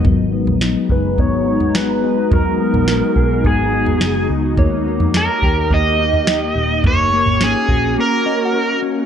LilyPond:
<<
  \new Staff \with { instrumentName = "Synth bell" } { \time 4/4 \key gis \minor \tempo 4 = 106 dis''8 r2. r8 | r1 | cis''2~ cis''8 r4. | r2 r8 dis''16 fis''4~ fis''16 | }
  \new Staff \with { instrumentName = "Electric slide guitar" } { \time 4/4 \key gis \minor r4. b'8 cis''4 b'4 | ais'2 gis'4. r8 | r4 ais'4 dis''2 | cis''4 gis'4 ais'4. r8 | }
  \new Staff \with { instrumentName = "Clean electric guitar" } { \time 4/4 \key gis \minor fis8 b8 dis'8 gis'8 b8 dis'8 gis'8 dis'8 | fis8 b8 dis'8 gis'8 b8 dis'8 gis'8 dis'8 | ais8 ais8 dis'8 g'8 ais8 dis'8 g'8 dis'8 | ais8 ais8 cis'8 fis'8 ais8 cis'8 fis'8 cis'8 | }
  \new Staff \with { instrumentName = "Ambient pad" } { \time 4/4 \key gis \minor << { <gis b fis' ais''>1~ | <gis b fis' ais''>1 | <ais g'>1 | <ais cis' fis'>1 | } \\ { dis'1~ | dis'1~ | dis'1 | r1 | } >> }
  \new Staff \with { instrumentName = "Picked electric bass" } { \clef bass \time 4/4 \key gis \minor gis,,8. ais,,8 r16 fis,,8 gis,,4. fis,,8 | gis,,8. ais,,8 r16 b,,8 gis,,4 fis,,8 cis,8 | dis,8. eis,8 r16 dis,8 dis,4. dis,,8 | fis,,8. gis,,8 r16 ais,,8 r2 | }
  \new DrumStaff \with { instrumentName = "Drums" } \drummode { \time 4/4 <bd tomfh>8. tomfh16 sn8 bd8 <bd tomfh>8. tomfh16 sn4 | <bd tomfh>8. tomfh16 sn8 bd8 <bd tomfh>8. tomfh16 sn4 | <bd tomfh>8. tomfh16 sn8 bd8 <bd tomfh>8. tomfh16 sn4 | <bd tomfh>8. tomfh16 sn8 <bd tomfh>8 r4 r4 | }
>>